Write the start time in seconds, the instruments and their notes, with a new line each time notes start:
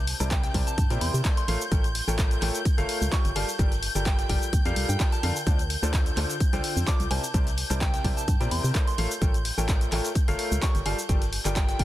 Already playing: fm bass C2, violin section G6
0.07 closed hi-hat, open hi-hat
0.20 fm bass C2, grand piano C3 E4 A#4 C5 D5 A5, closed hi-hat, cabasa
0.31 synth bell G5, kick, snare, clap, closed hi-hat, cabasa
0.44 synth bell G5, snare, closed hi-hat, cabasa
0.54 fm bass C2, grand piano C3 E4 A#4 C5 D5 A5, kick, closed hi-hat, open hi-hat
0.67 synth bell A5, closed hi-hat, cabasa
0.78 fm bass G2, kick, closed hi-hat, cabasa
0.90 fm bass A#2, grand piano C3 E4 A#4 C5 D5 G5, snare, closed hi-hat, cabasa
1.01 fm bass E2, synth bell C6, closed hi-hat, open hi-hat
1.14 fm bass C3, cabasa
1.25 grand piano A3 E4 A#4 C5 D5 A5, kick, snare, clap, closed hi-hat, cabasa
1.37 synth bell C6, closed hi-hat, cabasa
1.48 fm bass A1, grand piano A3 F4 A4 A#4 C#5 F5, closed hi-hat, open hi-hat
1.61 cabasa
1.72 fm bass A1, grand piano A3 F4 A4 A#4 C#5 G5, kick, closed hi-hat, cabasa
1.84 closed hi-hat, cabasa
1.95 closed hi-hat, open hi-hat
2.08 fm bass A1, grand piano A3 F4 A4 A#4 C#5 G5, cabasa
2.18 kick, snare, clap, closed hi-hat, cabasa
2.31 closed hi-hat, cabasa
2.42 fm bass A1, grand piano A3 F4 A4 A#4 C#5 G5, clap, closed hi-hat, open hi-hat
2.55 snare, closed hi-hat, cabasa
2.65 kick, closed hi-hat, cabasa
2.78 fm bass G1, grand piano A3 F4 A4 A#4 C#5 F5, snare, closed hi-hat, cabasa
2.89 closed hi-hat, open hi-hat
3.01 fm bass C#2, cabasa
3.12 grand piano G3 F4 A#4 G5, synth bell C#6, kick, snare, clap, closed hi-hat, cabasa
3.25 fm bass G1, closed hi-hat, cabasa
3.36 fm bass G1, grand piano G3 F4 A4 A#4 D5 F5, synth bell A5, closed hi-hat, open hi-hat
3.49 cabasa
3.59 fm bass G1, grand piano G3 F4 A4 A#4 D5 G5, kick, closed hi-hat, cabasa
3.72 snare, closed hi-hat, cabasa
3.83 closed hi-hat, open hi-hat
3.95 fm bass G1, grand piano G3 F4 A4 A#4 D5 G5, closed hi-hat, cabasa
4.06 synth bell G5, kick, snare, clap, closed hi-hat, cabasa
4.19 synth bell G5, snare, closed hi-hat, cabasa
4.29 fm bass G1, grand piano G3 F4 A4 A#4 D5 G5, synth bell G5, kick, closed hi-hat, open hi-hat
4.42 closed hi-hat, cabasa
4.53 fm bass D2, kick, closed hi-hat, cabasa
4.65 fm bass F2, grand piano G3 F4 A4 A#4 D5 F5, snare, closed hi-hat, cabasa
4.76 fm bass C2, closed hi-hat, open hi-hat
4.89 fm bass G2, synth bell G5, closed hi-hat, cabasa
5.00 grand piano G3 F4 A4 A#4 D5 G5, kick, snare, clap, closed hi-hat, cabasa
5.12 synth bell A5, closed hi-hat, cabasa
5.23 fm bass F2, grand piano D3 F4 A4 A#4 D5 F5, closed hi-hat, open hi-hat
5.36 cabasa
5.47 fm bass D2, grand piano D3 F4 A4 C5 D5 A5, kick, closed hi-hat, cabasa
5.59 closed hi-hat, cabasa
5.70 closed hi-hat, open hi-hat
5.83 fm bass D2, grand piano D3 F4 A4 C5 D5 A5, cabasa
5.94 kick, snare, clap, closed hi-hat, cabasa
6.06 closed hi-hat, cabasa
6.17 fm bass D2, grand piano D3 F4 A4 C5 D5 A5, clap, closed hi-hat, open hi-hat
6.30 snare, cabasa
6.40 kick, closed hi-hat, cabasa
6.53 fm bass C2, grand piano D3 F4 A4 C5 D5 G5, snare, closed hi-hat, cabasa
6.64 closed hi-hat, open hi-hat
6.76 fm bass F2, cabasa
6.87 grand piano F4 A4 C5 D5 A5, synth bell D6, kick, snare, clap, closed hi-hat, cabasa
7.00 fm bass C2, closed hi-hat, cabasa
7.11 fm bass C2, grand piano C3 E4 A#4 C5 D5 G5, synth bell A5, closed hi-hat, open hi-hat
7.24 cabasa
7.34 fm bass C2, grand piano C3 E4 A#4 C5 D5 A5, kick, closed hi-hat, cabasa
7.47 snare, closed hi-hat, cabasa
7.58 closed hi-hat, open hi-hat
7.70 fm bass C2, grand piano C3 E4 A#4 C5 D5 A5, closed hi-hat, cabasa
7.81 synth bell G5, kick, snare, clap, closed hi-hat, cabasa
7.94 synth bell G5, snare, closed hi-hat, cabasa
8.04 fm bass C2, grand piano C3 E4 A#4 C5 D5 A5, kick, closed hi-hat, open hi-hat
8.17 synth bell A5, closed hi-hat, cabasa
8.28 fm bass G2, kick, closed hi-hat, cabasa
8.40 fm bass A#2, grand piano C3 E4 A#4 C5 D5 G5, snare, closed hi-hat, cabasa
8.51 fm bass E2, synth bell C6, closed hi-hat, open hi-hat
8.64 fm bass C3, cabasa
8.75 grand piano A3 E4 A#4 C5 D5 A5, kick, snare, clap, closed hi-hat, cabasa
8.87 synth bell C6, closed hi-hat, cabasa
8.98 fm bass A1, grand piano A3 F4 A4 A#4 C#5 F5, closed hi-hat, open hi-hat
9.11 cabasa
9.22 fm bass A1, grand piano A3 F4 A4 A#4 C#5 G5, kick, closed hi-hat, cabasa
9.34 closed hi-hat, cabasa
9.45 closed hi-hat, open hi-hat
9.58 fm bass A1, grand piano A3 F4 A4 A#4 C#5 G5, cabasa
9.69 kick, snare, clap, closed hi-hat, cabasa
9.81 closed hi-hat, cabasa
9.92 fm bass A1, grand piano A3 F4 A4 A#4 C#5 G5, clap, closed hi-hat, open hi-hat
10.05 snare, closed hi-hat, cabasa
10.15 kick, closed hi-hat, cabasa
10.28 fm bass G1, grand piano A3 F4 A4 A#4 C#5 F5, snare, closed hi-hat, cabasa
10.39 closed hi-hat, open hi-hat
10.51 fm bass C#2, cabasa
10.62 grand piano G3 A4 A#4 G5, synth bell C#6, kick, snare, clap, closed hi-hat, cabasa
10.75 fm bass G1, closed hi-hat, cabasa
10.86 fm bass G1, grand piano G3 F4 A4 A#4 D5 F5, synth bell A5, closed hi-hat, open hi-hat
10.99 cabasa
11.09 fm bass G1, grand piano G3 F4 A4 A#4 D5 G5, kick, closed hi-hat, cabasa
11.22 snare, closed hi-hat, cabasa
11.33 closed hi-hat, open hi-hat
11.45 fm bass G1, grand piano G3 F4 A4 A#4 D5 G5, clap, closed hi-hat, cabasa
11.56 synth bell G5, kick, snare, clap, closed hi-hat, cabasa
11.69 synth bell G5, snare, closed hi-hat, cabasa
11.79 fm bass G1, grand piano G3 F4 A4 A#4 D5 G5, synth bell G5, kick, closed hi-hat, open hi-hat